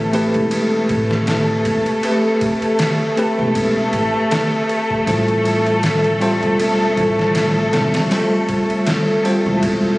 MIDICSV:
0, 0, Header, 1, 5, 480
1, 0, Start_track
1, 0, Key_signature, 0, "minor"
1, 0, Tempo, 759494
1, 1288, Time_signature, 4, 2, 24, 8
1, 6309, End_track
2, 0, Start_track
2, 0, Title_t, "Violin section"
2, 0, Program_c, 0, 48
2, 0, Note_on_c, 0, 57, 71
2, 0, Note_on_c, 0, 69, 71
2, 6309, Note_off_c, 0, 57, 0
2, 6309, Note_off_c, 0, 69, 0
2, 6309, End_track
3, 0, Start_track
3, 0, Title_t, "Tine electric piano"
3, 0, Program_c, 1, 4
3, 0, Control_c, 1, 64, 127
3, 0, Note_on_c, 1, 57, 68
3, 0, Note_on_c, 1, 60, 72
3, 0, Note_on_c, 1, 67, 67
3, 0, Note_on_c, 1, 71, 76
3, 65, Note_off_c, 1, 71, 0
3, 81, Note_off_c, 1, 57, 0
3, 81, Note_on_c, 1, 57, 84
3, 85, Note_off_c, 1, 60, 0
3, 85, Note_on_c, 1, 60, 80
3, 91, Note_off_c, 1, 67, 0
3, 91, Note_on_c, 1, 67, 80
3, 95, Note_on_c, 1, 71, 99
3, 1259, Note_off_c, 1, 57, 0
3, 1261, Note_off_c, 1, 60, 0
3, 1263, Note_off_c, 1, 67, 0
3, 1266, Note_off_c, 1, 71, 0
3, 1281, Note_on_c, 1, 57, 78
3, 1286, Note_on_c, 1, 60, 68
3, 1291, Note_on_c, 1, 67, 70
3, 1295, Note_on_c, 1, 71, 82
3, 1979, Note_off_c, 1, 57, 0
3, 1981, Note_off_c, 1, 60, 0
3, 1984, Note_off_c, 1, 67, 0
3, 1985, Note_off_c, 1, 71, 0
3, 2002, Note_on_c, 1, 57, 86
3, 2007, Note_on_c, 1, 60, 88
3, 2012, Note_on_c, 1, 67, 77
3, 2017, Note_on_c, 1, 71, 98
3, 3179, Note_off_c, 1, 57, 0
3, 3182, Note_off_c, 1, 60, 0
3, 3184, Note_off_c, 1, 67, 0
3, 3187, Note_off_c, 1, 71, 0
3, 3200, Note_on_c, 1, 55, 81
3, 3205, Note_on_c, 1, 60, 73
3, 3210, Note_on_c, 1, 65, 69
3, 3214, Control_c, 1, 64, 0
3, 3215, Note_on_c, 1, 72, 89
3, 3340, Control_c, 1, 64, 127
3, 3898, Note_off_c, 1, 55, 0
3, 3901, Note_off_c, 1, 60, 0
3, 3903, Note_off_c, 1, 65, 0
3, 3906, Note_off_c, 1, 72, 0
3, 3917, Note_on_c, 1, 55, 92
3, 3922, Note_on_c, 1, 60, 87
3, 3927, Note_on_c, 1, 65, 81
3, 3931, Note_on_c, 1, 72, 102
3, 5097, Note_off_c, 1, 55, 0
3, 5099, Note_off_c, 1, 60, 0
3, 5102, Note_off_c, 1, 65, 0
3, 5104, Note_off_c, 1, 72, 0
3, 5120, Note_on_c, 1, 55, 77
3, 5123, Note_on_c, 1, 60, 73
3, 5129, Note_on_c, 1, 65, 70
3, 5133, Note_on_c, 1, 72, 81
3, 5818, Note_off_c, 1, 55, 0
3, 5820, Note_off_c, 1, 60, 0
3, 5822, Note_off_c, 1, 65, 0
3, 5825, Note_off_c, 1, 72, 0
3, 5836, Note_on_c, 1, 55, 90
3, 5841, Note_on_c, 1, 60, 86
3, 5845, Note_on_c, 1, 65, 84
3, 5850, Note_on_c, 1, 72, 99
3, 6309, Note_off_c, 1, 55, 0
3, 6309, Note_off_c, 1, 60, 0
3, 6309, Note_off_c, 1, 65, 0
3, 6309, Note_off_c, 1, 72, 0
3, 6309, End_track
4, 0, Start_track
4, 0, Title_t, "Upright bass"
4, 0, Program_c, 2, 32
4, 0, Note_on_c, 2, 33, 80
4, 195, Note_off_c, 2, 33, 0
4, 219, Note_on_c, 2, 28, 84
4, 547, Note_off_c, 2, 28, 0
4, 567, Note_on_c, 2, 33, 77
4, 1027, Note_off_c, 2, 33, 0
4, 1047, Note_on_c, 2, 28, 84
4, 1164, Note_off_c, 2, 28, 0
4, 2140, Note_on_c, 2, 28, 84
4, 2467, Note_off_c, 2, 28, 0
4, 2486, Note_on_c, 2, 33, 88
4, 2604, Note_off_c, 2, 33, 0
4, 3206, Note_on_c, 2, 33, 88
4, 4034, Note_off_c, 2, 33, 0
4, 4060, Note_on_c, 2, 28, 84
4, 4387, Note_off_c, 2, 28, 0
4, 4408, Note_on_c, 2, 33, 79
4, 4867, Note_off_c, 2, 33, 0
4, 4884, Note_on_c, 2, 28, 92
4, 5003, Note_off_c, 2, 28, 0
4, 5979, Note_on_c, 2, 28, 93
4, 6307, Note_off_c, 2, 28, 0
4, 6309, End_track
5, 0, Start_track
5, 0, Title_t, "Drums"
5, 85, Note_on_c, 9, 51, 67
5, 148, Note_off_c, 9, 51, 0
5, 217, Note_on_c, 9, 51, 43
5, 280, Note_off_c, 9, 51, 0
5, 323, Note_on_c, 9, 51, 82
5, 386, Note_off_c, 9, 51, 0
5, 564, Note_on_c, 9, 51, 58
5, 566, Note_on_c, 9, 36, 85
5, 627, Note_off_c, 9, 51, 0
5, 629, Note_off_c, 9, 36, 0
5, 701, Note_on_c, 9, 38, 50
5, 764, Note_off_c, 9, 38, 0
5, 803, Note_on_c, 9, 51, 70
5, 808, Note_on_c, 9, 38, 97
5, 867, Note_off_c, 9, 51, 0
5, 872, Note_off_c, 9, 38, 0
5, 1044, Note_on_c, 9, 51, 60
5, 1107, Note_off_c, 9, 51, 0
5, 1176, Note_on_c, 9, 51, 42
5, 1240, Note_off_c, 9, 51, 0
5, 1284, Note_on_c, 9, 51, 71
5, 1347, Note_off_c, 9, 51, 0
5, 1525, Note_on_c, 9, 51, 59
5, 1526, Note_on_c, 9, 36, 92
5, 1588, Note_off_c, 9, 51, 0
5, 1589, Note_off_c, 9, 36, 0
5, 1657, Note_on_c, 9, 51, 42
5, 1720, Note_off_c, 9, 51, 0
5, 1763, Note_on_c, 9, 51, 79
5, 1768, Note_on_c, 9, 38, 114
5, 1826, Note_off_c, 9, 51, 0
5, 1831, Note_off_c, 9, 38, 0
5, 2006, Note_on_c, 9, 51, 62
5, 2069, Note_off_c, 9, 51, 0
5, 2245, Note_on_c, 9, 51, 80
5, 2247, Note_on_c, 9, 36, 104
5, 2308, Note_off_c, 9, 51, 0
5, 2310, Note_off_c, 9, 36, 0
5, 2483, Note_on_c, 9, 51, 58
5, 2546, Note_off_c, 9, 51, 0
5, 2726, Note_on_c, 9, 51, 81
5, 2731, Note_on_c, 9, 38, 103
5, 2789, Note_off_c, 9, 51, 0
5, 2794, Note_off_c, 9, 38, 0
5, 2966, Note_on_c, 9, 51, 60
5, 3030, Note_off_c, 9, 51, 0
5, 3100, Note_on_c, 9, 36, 91
5, 3163, Note_off_c, 9, 36, 0
5, 3206, Note_on_c, 9, 51, 74
5, 3207, Note_on_c, 9, 36, 101
5, 3269, Note_off_c, 9, 51, 0
5, 3270, Note_off_c, 9, 36, 0
5, 3339, Note_on_c, 9, 51, 42
5, 3402, Note_off_c, 9, 51, 0
5, 3447, Note_on_c, 9, 51, 64
5, 3510, Note_off_c, 9, 51, 0
5, 3580, Note_on_c, 9, 51, 43
5, 3643, Note_off_c, 9, 51, 0
5, 3685, Note_on_c, 9, 51, 83
5, 3690, Note_on_c, 9, 38, 112
5, 3748, Note_off_c, 9, 51, 0
5, 3753, Note_off_c, 9, 38, 0
5, 3819, Note_on_c, 9, 51, 42
5, 3883, Note_off_c, 9, 51, 0
5, 3927, Note_on_c, 9, 51, 65
5, 3990, Note_off_c, 9, 51, 0
5, 4062, Note_on_c, 9, 51, 42
5, 4125, Note_off_c, 9, 51, 0
5, 4168, Note_on_c, 9, 51, 84
5, 4231, Note_off_c, 9, 51, 0
5, 4407, Note_on_c, 9, 36, 81
5, 4407, Note_on_c, 9, 51, 55
5, 4470, Note_off_c, 9, 36, 0
5, 4471, Note_off_c, 9, 51, 0
5, 4545, Note_on_c, 9, 38, 51
5, 4608, Note_off_c, 9, 38, 0
5, 4644, Note_on_c, 9, 51, 77
5, 4649, Note_on_c, 9, 38, 103
5, 4707, Note_off_c, 9, 51, 0
5, 4712, Note_off_c, 9, 38, 0
5, 4885, Note_on_c, 9, 51, 70
5, 4890, Note_on_c, 9, 38, 102
5, 4948, Note_off_c, 9, 51, 0
5, 4954, Note_off_c, 9, 38, 0
5, 5018, Note_on_c, 9, 51, 76
5, 5023, Note_on_c, 9, 38, 97
5, 5081, Note_off_c, 9, 51, 0
5, 5086, Note_off_c, 9, 38, 0
5, 5125, Note_on_c, 9, 51, 71
5, 5130, Note_on_c, 9, 38, 95
5, 5189, Note_off_c, 9, 51, 0
5, 5194, Note_off_c, 9, 38, 0
5, 5363, Note_on_c, 9, 51, 63
5, 5365, Note_on_c, 9, 36, 89
5, 5426, Note_off_c, 9, 51, 0
5, 5428, Note_off_c, 9, 36, 0
5, 5498, Note_on_c, 9, 51, 43
5, 5561, Note_off_c, 9, 51, 0
5, 5603, Note_on_c, 9, 51, 89
5, 5608, Note_on_c, 9, 38, 109
5, 5666, Note_off_c, 9, 51, 0
5, 5671, Note_off_c, 9, 38, 0
5, 5846, Note_on_c, 9, 51, 64
5, 5909, Note_off_c, 9, 51, 0
5, 6084, Note_on_c, 9, 51, 86
5, 6085, Note_on_c, 9, 36, 97
5, 6147, Note_off_c, 9, 51, 0
5, 6149, Note_off_c, 9, 36, 0
5, 6309, End_track
0, 0, End_of_file